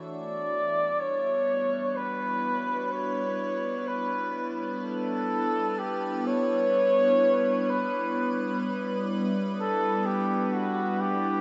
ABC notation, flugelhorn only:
X:1
M:4/4
L:1/8
Q:1/4=63
K:Glyd
V:1 name="Flugelhorn"
d2 c2 B2 c2 | B z A2 G c3 | B3 z A G F G |]